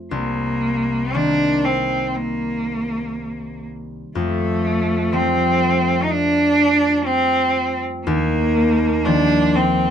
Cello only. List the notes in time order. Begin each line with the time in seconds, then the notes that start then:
0.13 A#3
1.14 D4
1.65 C4
2.16 A#3
4.17 A3
5.14 C4
6.03 D#4
6.11 D4
7.06 C4
8.05 A#3
9.05 D4
9.56 C4